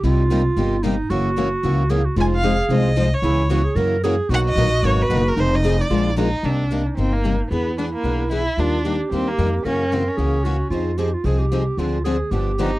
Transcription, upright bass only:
0.03 0.46 C2 medium
0.57 0.99 G1 medium
1.10 1.53 F#1 medium
1.63 2.06 C#2 medium
2.16 2.59 F1 medium
2.69 3.12 C2 medium
3.22 3.66 C#2 medium
3.75 4.19 F#2 medium
4.29 4.51 B1 medium
4.56 4.79 A#1 medium
4.83 5.06 G#1 medium
5.09 5.33 F#1 medium
5.37 5.79 F1 medium
5.90 6.33 A#1 medium
6.43 6.86 C2 medium
6.97 7.40 G1 medium
7.51 7.94 E2 medium
8.04 8.47 B1 medium
8.57 9.00 D#2 medium
9.11 9.34 D#2 medium
9.38 9.61 F2 medium
9.65 10.08 F#2 medium
10.18 10.61 C#2 medium
10.70 11.14 F2 medium
11.24 11.67 C2 medium
11.77 12.21 D2 medium
12.31 12.74 G1 medium

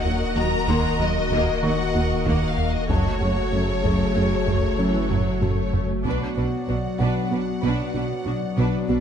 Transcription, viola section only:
0.00 3.42 F#4 medium
0.05 0.13 F#3 soft
0.36 0.44 D#3 soft
0.68 0.97 A#3 medium
1.00 1.08 F#3 soft
1.32 1.61 A#3 medium
1.63 1.71 F#3 soft
1.95 2.03 D#3 soft
2.26 2.56 A#3 medium
2.89 3.19 F#3 soft
3.21 3.29 C#3 soft
3.52 4.75 C#3 medium
4.79 5.10 E3 medium
5.10 5.42 F#3 soft
5.42 6.05 A3 soft
6.04 6.34 D4 soft
6.36 6.44 D4 soft
6.68 6.76 D4 soft
7.00 7.29 D4 soft
7.32 7.40 D4 soft
7.64 7.93 D4 soft
7.96 8.04 D4 soft
8.26 8.34 D4 soft
8.57 8.87 D4 soft
8.88 8.96 D4 soft

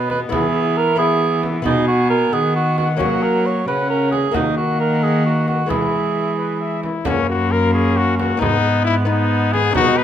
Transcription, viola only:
0.00 0.29 B3 medium
0.32 0.98 B3 medium
0.99 1.64 B3 medium
1.66 2.96 B3 medium
3.00 3.66 A#3 medium
3.68 4.33 C#4 medium
4.34 5.66 A#3 medium
5.70 6.84 G#3 soft
7.06 8.43 A#3 medium
8.42 9.08 B3 medium
9.08 9.78 B3 medium
9.76 10.04 D#4 medium

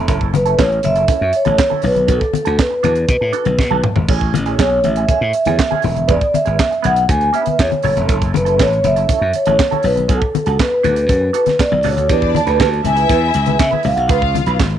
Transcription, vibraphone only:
0.35 0.60 B4 medium
0.60 0.85 C#5 medium
0.85 1.36 E5 loud
1.36 1.86 C#5 medium
1.86 2.11 B4 medium
2.11 2.61 A4 medium
2.61 3.81 B4 medium
4.60 4.85 C#5 medium
4.85 5.09 E5 medium
5.10 6.13 E5 medium
6.11 6.36 D5 medium
6.35 6.86 E5 medium
6.86 6.96 F#5 loud
7.10 7.33 G#5 medium
7.35 7.60 E5 medium
7.60 7.95 C#5 medium
8.37 8.61 B4 medium
8.62 8.86 C#5 loud
8.87 9.37 E5 loud
9.36 9.86 C#5 medium
9.86 9.96 B4 medium
10.11 10.62 A4 medium
10.61 11.34 B4 medium
11.36 11.61 B4 medium
11.61 11.86 D5 medium
12.37 12.87 A5 medium
12.86 13.63 G#5 medium
13.61 13.86 E5 medium
13.86 13.92 F5 medium
13.94 13.99 F#5 medium
14.00 14.33 F5 medium

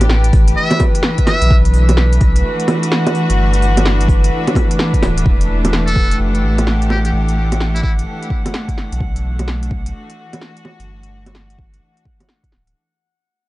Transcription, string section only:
0.00 12.75 E3 medium
0.00 1.50 A3 medium
0.00 1.50 D4 medium
0.00 1.50 G4 medium
1.68 12.75 D4 medium
1.76 12.75 A3 medium
2.38 5.26 F#4 medium
6.12 9.00 G4 medium
9.87 12.75 F#4 medium

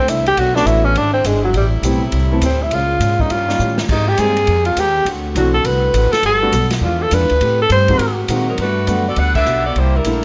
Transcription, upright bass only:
0.08 0.36 C2 medium
0.37 0.65 B1 medium
0.66 0.95 A1 medium
0.95 1.24 G#1 medium
1.24 1.53 G1 medium
1.53 1.82 A1 medium
1.82 2.11 B1 medium
2.12 2.40 C2 medium
2.41 2.70 D2 medium
2.71 2.99 C#2 loud
3.00 3.29 G#2 medium
3.30 3.59 G2 medium
3.59 3.88 A2 medium
3.88 4.17 G#2 medium
4.18 4.47 G2 medium
4.47 4.76 F2 medium
4.76 5.05 D#2 medium
5.05 5.34 D2 medium
5.35 5.64 B1 medium
5.64 5.93 C2 medium
5.94 6.11 A1 medium
6.13 muted upright bass stroke soft
6.23 6.51 G1 medium
6.52 6.80 B1 loud
6.81 7.10 E2 medium
7.12 7.21 F2 medium
7.21 7.30 E2 medium
7.31 7.40 D2 medium
7.41 7.69 A2 medium
7.70 7.98 G2 medium
7.99 8.27 G#2 medium
8.29 8.57 A#2 medium
8.58 8.87 G2 medium
8.88 9.16 F#2 medium
9.17 9.45 D2 medium
9.45 9.74 B1 medium
9.76 10.04 C2 medium
10.05 10.25 A#1 medium

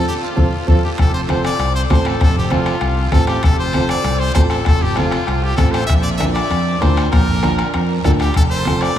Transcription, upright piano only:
0.36 0.46 C4 medium
0.36 0.46 F4 medium
0.36 0.46 A4 medium
0.67 0.77 C4 medium
0.67 0.77 F4 medium
0.67 0.77 A4 medium
1.28 1.50 C4 medium
1.28 1.50 F4 medium
1.28 1.50 A4 medium
1.90 2.11 C4 medium
1.90 2.12 F4 medium
1.90 2.12 A4 medium
2.50 2.72 C4 medium
2.50 2.73 F4 medium
2.50 2.73 A4 medium
3.12 3.34 C4 medium
3.12 3.34 F4 medium
3.12 3.34 A4 medium
3.74 3.96 C4 medium
3.74 3.96 F4 medium
3.74 3.96 A4 medium
4.35 4.57 C4 medium
4.35 4.57 F4 medium
4.35 4.57 A4 medium
4.96 5.18 C4 medium
4.96 5.18 F4 medium
4.96 5.18 A4 medium
5.57 5.79 C4 medium
5.57 5.79 F4 medium
5.57 5.79 A4 medium
6.19 6.41 D4 medium
6.19 6.41 F4 medium
6.19 6.41 A#4 medium
6.80 7.02 D4 medium
6.80 7.02 F4 medium
6.80 7.03 A#4 medium
7.42 7.64 D4 medium
7.42 7.64 F4 medium
7.42 7.64 A#4 medium
8.04 8.26 D4 medium
8.04 8.26 F4 medium
8.04 8.26 A#4 medium
8.65 8.87 C4 medium
8.65 8.87 F4 medium
8.65 8.87 A4 medium

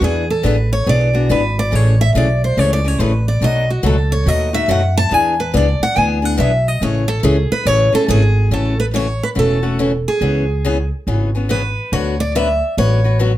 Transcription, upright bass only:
0.01 0.43 E2 medium
0.44 0.85 A1 medium
0.87 1.28 B1 medium
1.30 1.71 G#1 medium
1.73 2.14 A1 medium
2.15 2.56 B1 medium
2.57 2.98 C#2 medium
2.99 3.40 A1 medium
3.41 3.82 B1 medium
3.83 4.25 C#2 medium
4.26 4.68 D#2 medium
4.68 5.10 F#2 medium
5.11 5.53 E2 medium
5.54 5.79 C#2 medium
5.80 muted upright bass stroke soft
5.96 6.38 D2 medium
6.39 6.80 B1 medium
6.81 7.23 A1 medium
7.23 7.49 C#2 medium
7.51 muted upright bass stroke soft
7.65 7.91 A1 medium
7.93 muted upright bass stroke soft
8.08 8.50 G#1 medium
8.51 9.19 A1 medium
9.36 10.05 E1 medium
10.21 10.89 C#2 medium
11.07 11.75 G#1 medium
11.92 12.60 D2 medium
12.77 13.38 A1 medium

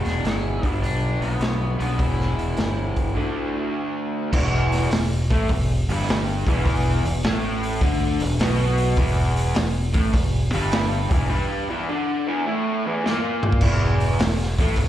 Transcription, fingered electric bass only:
0.05 0.23 E1 medium
0.24 0.61 G1 medium
0.63 0.81 G1 medium
0.82 1.19 B1 medium
1.21 1.39 B1 medium
1.40 1.78 B1 medium
1.80 1.98 B1 medium
1.99 2.37 E1 medium
2.39 2.57 E1 medium
2.58 2.95 G1 medium
2.97 3.15 G1 medium
4.33 4.87 E1 medium
4.92 5.28 E1 medium
5.31 5.48 A1 medium
5.50 5.86 E1 medium
5.89 6.43 G1 loud
6.47 7.01 E1 loud
7.04 7.22 E1 medium
7.24 7.78 A1 medium
7.81 8.18 D2 loud
8.21 8.38 E1 medium
8.39 8.93 B1 loud
8.97 9.51 E1 medium
9.57 9.92 E1 medium
9.95 10.12 A1 medium
10.14 10.50 E1 medium
10.54 11.07 G1 loud
11.11 11.28 E1 loud
13.61 14.16 E1 loud
14.20 14.56 E1 medium
14.59 14.77 A1 loud
14.77 14.88 E1 medium

